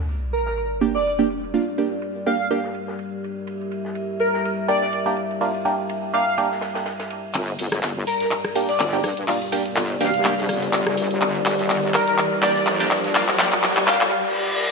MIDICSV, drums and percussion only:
0, 0, Header, 1, 2, 480
1, 0, Start_track
1, 0, Tempo, 483871
1, 1527, Time_signature, 4, 2, 24, 8
1, 14596, End_track
2, 0, Start_track
2, 0, Title_t, "Drums"
2, 87, Note_on_c, 9, 51, 80
2, 186, Note_off_c, 9, 51, 0
2, 325, Note_on_c, 9, 51, 59
2, 424, Note_off_c, 9, 51, 0
2, 457, Note_on_c, 9, 38, 52
2, 557, Note_off_c, 9, 38, 0
2, 570, Note_on_c, 9, 51, 79
2, 670, Note_off_c, 9, 51, 0
2, 800, Note_on_c, 9, 51, 58
2, 899, Note_off_c, 9, 51, 0
2, 937, Note_on_c, 9, 38, 36
2, 1037, Note_off_c, 9, 38, 0
2, 1059, Note_on_c, 9, 51, 83
2, 1158, Note_off_c, 9, 51, 0
2, 1290, Note_on_c, 9, 51, 64
2, 1390, Note_off_c, 9, 51, 0
2, 1425, Note_on_c, 9, 51, 41
2, 1524, Note_off_c, 9, 51, 0
2, 1526, Note_on_c, 9, 46, 77
2, 1626, Note_off_c, 9, 46, 0
2, 1666, Note_on_c, 9, 51, 36
2, 1765, Note_off_c, 9, 51, 0
2, 1765, Note_on_c, 9, 51, 66
2, 1864, Note_off_c, 9, 51, 0
2, 2002, Note_on_c, 9, 51, 70
2, 2101, Note_off_c, 9, 51, 0
2, 2251, Note_on_c, 9, 51, 67
2, 2350, Note_off_c, 9, 51, 0
2, 2486, Note_on_c, 9, 51, 81
2, 2585, Note_off_c, 9, 51, 0
2, 2619, Note_on_c, 9, 38, 45
2, 2718, Note_off_c, 9, 38, 0
2, 2723, Note_on_c, 9, 51, 55
2, 2822, Note_off_c, 9, 51, 0
2, 2859, Note_on_c, 9, 38, 45
2, 2958, Note_off_c, 9, 38, 0
2, 2964, Note_on_c, 9, 51, 70
2, 3063, Note_off_c, 9, 51, 0
2, 3216, Note_on_c, 9, 51, 56
2, 3315, Note_off_c, 9, 51, 0
2, 3444, Note_on_c, 9, 51, 86
2, 3543, Note_off_c, 9, 51, 0
2, 3583, Note_on_c, 9, 51, 35
2, 3682, Note_off_c, 9, 51, 0
2, 3685, Note_on_c, 9, 51, 61
2, 3784, Note_off_c, 9, 51, 0
2, 3818, Note_on_c, 9, 38, 43
2, 3917, Note_off_c, 9, 38, 0
2, 3919, Note_on_c, 9, 51, 70
2, 4018, Note_off_c, 9, 51, 0
2, 4162, Note_on_c, 9, 51, 63
2, 4262, Note_off_c, 9, 51, 0
2, 4306, Note_on_c, 9, 38, 47
2, 4406, Note_off_c, 9, 38, 0
2, 4416, Note_on_c, 9, 51, 83
2, 4515, Note_off_c, 9, 51, 0
2, 4650, Note_on_c, 9, 51, 68
2, 4749, Note_off_c, 9, 51, 0
2, 4775, Note_on_c, 9, 38, 39
2, 4874, Note_off_c, 9, 38, 0
2, 4886, Note_on_c, 9, 51, 83
2, 4986, Note_off_c, 9, 51, 0
2, 5123, Note_on_c, 9, 51, 60
2, 5222, Note_off_c, 9, 51, 0
2, 5265, Note_on_c, 9, 51, 40
2, 5364, Note_off_c, 9, 51, 0
2, 5369, Note_on_c, 9, 46, 78
2, 5468, Note_off_c, 9, 46, 0
2, 5498, Note_on_c, 9, 51, 42
2, 5597, Note_off_c, 9, 51, 0
2, 5607, Note_on_c, 9, 51, 63
2, 5706, Note_off_c, 9, 51, 0
2, 5847, Note_on_c, 9, 51, 71
2, 5946, Note_off_c, 9, 51, 0
2, 6090, Note_on_c, 9, 51, 61
2, 6189, Note_off_c, 9, 51, 0
2, 6325, Note_on_c, 9, 51, 87
2, 6425, Note_off_c, 9, 51, 0
2, 6465, Note_on_c, 9, 38, 40
2, 6561, Note_off_c, 9, 38, 0
2, 6561, Note_on_c, 9, 38, 91
2, 6568, Note_on_c, 9, 51, 75
2, 6660, Note_off_c, 9, 38, 0
2, 6667, Note_off_c, 9, 51, 0
2, 6699, Note_on_c, 9, 38, 99
2, 6699, Note_on_c, 9, 51, 68
2, 6798, Note_off_c, 9, 38, 0
2, 6798, Note_off_c, 9, 51, 0
2, 6803, Note_on_c, 9, 38, 93
2, 6803, Note_on_c, 9, 51, 71
2, 6902, Note_off_c, 9, 38, 0
2, 6902, Note_off_c, 9, 51, 0
2, 6940, Note_on_c, 9, 38, 91
2, 6940, Note_on_c, 9, 51, 67
2, 7039, Note_off_c, 9, 51, 0
2, 7040, Note_off_c, 9, 38, 0
2, 7046, Note_on_c, 9, 51, 64
2, 7145, Note_off_c, 9, 51, 0
2, 7278, Note_on_c, 9, 51, 86
2, 7286, Note_on_c, 9, 39, 46
2, 7286, Note_on_c, 9, 42, 65
2, 7378, Note_off_c, 9, 51, 0
2, 7385, Note_off_c, 9, 39, 0
2, 7385, Note_off_c, 9, 42, 0
2, 7419, Note_on_c, 9, 51, 40
2, 7518, Note_off_c, 9, 51, 0
2, 7526, Note_on_c, 9, 46, 99
2, 7530, Note_on_c, 9, 51, 64
2, 7625, Note_off_c, 9, 46, 0
2, 7630, Note_off_c, 9, 51, 0
2, 7656, Note_on_c, 9, 38, 51
2, 7659, Note_on_c, 9, 37, 75
2, 7659, Note_on_c, 9, 42, 51
2, 7755, Note_off_c, 9, 38, 0
2, 7758, Note_off_c, 9, 37, 0
2, 7758, Note_off_c, 9, 42, 0
2, 7765, Note_on_c, 9, 38, 105
2, 7766, Note_on_c, 9, 39, 46
2, 7766, Note_on_c, 9, 42, 61
2, 7768, Note_on_c, 9, 51, 74
2, 7864, Note_off_c, 9, 38, 0
2, 7866, Note_off_c, 9, 39, 0
2, 7866, Note_off_c, 9, 42, 0
2, 7867, Note_off_c, 9, 51, 0
2, 8006, Note_on_c, 9, 46, 88
2, 8011, Note_on_c, 9, 51, 60
2, 8106, Note_off_c, 9, 46, 0
2, 8110, Note_off_c, 9, 51, 0
2, 8138, Note_on_c, 9, 42, 53
2, 8146, Note_on_c, 9, 38, 53
2, 8238, Note_off_c, 9, 42, 0
2, 8244, Note_on_c, 9, 51, 84
2, 8246, Note_off_c, 9, 38, 0
2, 8246, Note_on_c, 9, 39, 50
2, 8246, Note_on_c, 9, 42, 62
2, 8343, Note_off_c, 9, 51, 0
2, 8345, Note_off_c, 9, 39, 0
2, 8345, Note_off_c, 9, 42, 0
2, 8378, Note_on_c, 9, 37, 60
2, 8478, Note_off_c, 9, 37, 0
2, 8486, Note_on_c, 9, 46, 100
2, 8489, Note_on_c, 9, 51, 69
2, 8586, Note_off_c, 9, 46, 0
2, 8588, Note_off_c, 9, 51, 0
2, 8615, Note_on_c, 9, 38, 41
2, 8619, Note_on_c, 9, 42, 53
2, 8715, Note_off_c, 9, 38, 0
2, 8718, Note_off_c, 9, 42, 0
2, 8722, Note_on_c, 9, 38, 106
2, 8726, Note_on_c, 9, 39, 51
2, 8726, Note_on_c, 9, 42, 63
2, 8727, Note_on_c, 9, 51, 81
2, 8821, Note_off_c, 9, 38, 0
2, 8826, Note_off_c, 9, 39, 0
2, 8826, Note_off_c, 9, 42, 0
2, 8826, Note_off_c, 9, 51, 0
2, 8963, Note_on_c, 9, 51, 63
2, 8966, Note_on_c, 9, 37, 63
2, 8966, Note_on_c, 9, 46, 88
2, 9062, Note_off_c, 9, 51, 0
2, 9066, Note_off_c, 9, 37, 0
2, 9066, Note_off_c, 9, 46, 0
2, 9099, Note_on_c, 9, 42, 51
2, 9102, Note_on_c, 9, 51, 43
2, 9198, Note_off_c, 9, 42, 0
2, 9201, Note_off_c, 9, 51, 0
2, 9206, Note_on_c, 9, 39, 54
2, 9206, Note_on_c, 9, 42, 62
2, 9207, Note_on_c, 9, 46, 81
2, 9306, Note_off_c, 9, 39, 0
2, 9306, Note_off_c, 9, 42, 0
2, 9306, Note_off_c, 9, 46, 0
2, 9340, Note_on_c, 9, 51, 39
2, 9439, Note_off_c, 9, 51, 0
2, 9446, Note_on_c, 9, 46, 103
2, 9451, Note_on_c, 9, 51, 64
2, 9545, Note_off_c, 9, 46, 0
2, 9550, Note_off_c, 9, 51, 0
2, 9579, Note_on_c, 9, 42, 51
2, 9678, Note_off_c, 9, 42, 0
2, 9683, Note_on_c, 9, 38, 105
2, 9685, Note_on_c, 9, 51, 88
2, 9686, Note_on_c, 9, 39, 58
2, 9686, Note_on_c, 9, 42, 63
2, 9782, Note_off_c, 9, 38, 0
2, 9785, Note_off_c, 9, 39, 0
2, 9785, Note_off_c, 9, 42, 0
2, 9785, Note_off_c, 9, 51, 0
2, 9926, Note_on_c, 9, 46, 95
2, 9929, Note_on_c, 9, 51, 61
2, 10025, Note_off_c, 9, 46, 0
2, 10028, Note_off_c, 9, 51, 0
2, 10058, Note_on_c, 9, 42, 52
2, 10158, Note_off_c, 9, 42, 0
2, 10161, Note_on_c, 9, 51, 88
2, 10166, Note_on_c, 9, 39, 64
2, 10166, Note_on_c, 9, 42, 63
2, 10260, Note_off_c, 9, 51, 0
2, 10266, Note_off_c, 9, 39, 0
2, 10266, Note_off_c, 9, 42, 0
2, 10300, Note_on_c, 9, 38, 48
2, 10399, Note_off_c, 9, 38, 0
2, 10403, Note_on_c, 9, 51, 70
2, 10406, Note_on_c, 9, 37, 62
2, 10406, Note_on_c, 9, 46, 103
2, 10502, Note_off_c, 9, 51, 0
2, 10506, Note_off_c, 9, 37, 0
2, 10506, Note_off_c, 9, 46, 0
2, 10539, Note_on_c, 9, 42, 53
2, 10540, Note_on_c, 9, 38, 45
2, 10638, Note_off_c, 9, 42, 0
2, 10639, Note_off_c, 9, 38, 0
2, 10642, Note_on_c, 9, 51, 92
2, 10646, Note_on_c, 9, 38, 121
2, 10647, Note_on_c, 9, 39, 67
2, 10647, Note_on_c, 9, 42, 62
2, 10741, Note_off_c, 9, 51, 0
2, 10745, Note_off_c, 9, 38, 0
2, 10746, Note_off_c, 9, 39, 0
2, 10746, Note_off_c, 9, 42, 0
2, 10779, Note_on_c, 9, 37, 73
2, 10878, Note_off_c, 9, 37, 0
2, 10886, Note_on_c, 9, 46, 95
2, 10888, Note_on_c, 9, 51, 69
2, 10986, Note_off_c, 9, 46, 0
2, 10987, Note_off_c, 9, 51, 0
2, 11019, Note_on_c, 9, 42, 53
2, 11118, Note_off_c, 9, 42, 0
2, 11124, Note_on_c, 9, 51, 79
2, 11126, Note_on_c, 9, 39, 72
2, 11126, Note_on_c, 9, 42, 63
2, 11223, Note_off_c, 9, 51, 0
2, 11225, Note_off_c, 9, 39, 0
2, 11225, Note_off_c, 9, 42, 0
2, 11257, Note_on_c, 9, 51, 44
2, 11357, Note_off_c, 9, 51, 0
2, 11366, Note_on_c, 9, 39, 75
2, 11366, Note_on_c, 9, 46, 107
2, 11366, Note_on_c, 9, 51, 66
2, 11465, Note_off_c, 9, 39, 0
2, 11465, Note_off_c, 9, 46, 0
2, 11465, Note_off_c, 9, 51, 0
2, 11496, Note_on_c, 9, 38, 49
2, 11499, Note_on_c, 9, 42, 50
2, 11595, Note_off_c, 9, 38, 0
2, 11598, Note_off_c, 9, 42, 0
2, 11605, Note_on_c, 9, 38, 106
2, 11606, Note_on_c, 9, 39, 73
2, 11606, Note_on_c, 9, 42, 59
2, 11612, Note_on_c, 9, 51, 93
2, 11704, Note_off_c, 9, 38, 0
2, 11706, Note_off_c, 9, 39, 0
2, 11706, Note_off_c, 9, 42, 0
2, 11711, Note_off_c, 9, 51, 0
2, 11846, Note_on_c, 9, 39, 79
2, 11846, Note_on_c, 9, 46, 93
2, 11946, Note_off_c, 9, 39, 0
2, 11946, Note_off_c, 9, 46, 0
2, 11979, Note_on_c, 9, 42, 52
2, 12078, Note_off_c, 9, 42, 0
2, 12087, Note_on_c, 9, 39, 80
2, 12087, Note_on_c, 9, 42, 64
2, 12088, Note_on_c, 9, 51, 91
2, 12186, Note_off_c, 9, 39, 0
2, 12186, Note_off_c, 9, 42, 0
2, 12187, Note_off_c, 9, 51, 0
2, 12322, Note_on_c, 9, 51, 70
2, 12326, Note_on_c, 9, 39, 84
2, 12326, Note_on_c, 9, 46, 110
2, 12421, Note_off_c, 9, 51, 0
2, 12426, Note_off_c, 9, 39, 0
2, 12426, Note_off_c, 9, 46, 0
2, 12459, Note_on_c, 9, 42, 51
2, 12460, Note_on_c, 9, 38, 42
2, 12558, Note_off_c, 9, 42, 0
2, 12559, Note_off_c, 9, 38, 0
2, 12565, Note_on_c, 9, 51, 88
2, 12567, Note_on_c, 9, 39, 86
2, 12567, Note_on_c, 9, 42, 64
2, 12568, Note_on_c, 9, 38, 120
2, 12664, Note_off_c, 9, 51, 0
2, 12666, Note_off_c, 9, 39, 0
2, 12666, Note_off_c, 9, 42, 0
2, 12668, Note_off_c, 9, 38, 0
2, 12803, Note_on_c, 9, 51, 70
2, 12807, Note_on_c, 9, 39, 90
2, 12807, Note_on_c, 9, 46, 96
2, 12902, Note_off_c, 9, 51, 0
2, 12906, Note_off_c, 9, 39, 0
2, 12906, Note_off_c, 9, 46, 0
2, 12939, Note_on_c, 9, 42, 50
2, 12943, Note_on_c, 9, 51, 39
2, 13038, Note_off_c, 9, 42, 0
2, 13042, Note_off_c, 9, 51, 0
2, 13047, Note_on_c, 9, 39, 91
2, 13047, Note_on_c, 9, 42, 61
2, 13049, Note_on_c, 9, 46, 84
2, 13146, Note_off_c, 9, 39, 0
2, 13146, Note_off_c, 9, 42, 0
2, 13148, Note_off_c, 9, 46, 0
2, 13179, Note_on_c, 9, 39, 80
2, 13183, Note_on_c, 9, 51, 39
2, 13278, Note_off_c, 9, 39, 0
2, 13282, Note_off_c, 9, 51, 0
2, 13285, Note_on_c, 9, 51, 61
2, 13286, Note_on_c, 9, 39, 95
2, 13286, Note_on_c, 9, 46, 109
2, 13384, Note_off_c, 9, 51, 0
2, 13386, Note_off_c, 9, 39, 0
2, 13386, Note_off_c, 9, 46, 0
2, 13419, Note_on_c, 9, 39, 82
2, 13419, Note_on_c, 9, 42, 50
2, 13518, Note_off_c, 9, 39, 0
2, 13518, Note_off_c, 9, 42, 0
2, 13521, Note_on_c, 9, 38, 115
2, 13523, Note_on_c, 9, 51, 83
2, 13527, Note_on_c, 9, 39, 93
2, 13527, Note_on_c, 9, 42, 61
2, 13621, Note_off_c, 9, 38, 0
2, 13622, Note_off_c, 9, 51, 0
2, 13626, Note_off_c, 9, 39, 0
2, 13626, Note_off_c, 9, 42, 0
2, 13659, Note_on_c, 9, 39, 82
2, 13757, Note_on_c, 9, 51, 73
2, 13758, Note_off_c, 9, 39, 0
2, 13766, Note_on_c, 9, 39, 99
2, 13766, Note_on_c, 9, 46, 99
2, 13767, Note_on_c, 9, 38, 98
2, 13857, Note_off_c, 9, 51, 0
2, 13865, Note_off_c, 9, 39, 0
2, 13865, Note_off_c, 9, 46, 0
2, 13866, Note_off_c, 9, 38, 0
2, 13899, Note_on_c, 9, 39, 90
2, 13899, Note_on_c, 9, 42, 52
2, 13998, Note_off_c, 9, 39, 0
2, 13998, Note_off_c, 9, 42, 0
2, 14596, End_track
0, 0, End_of_file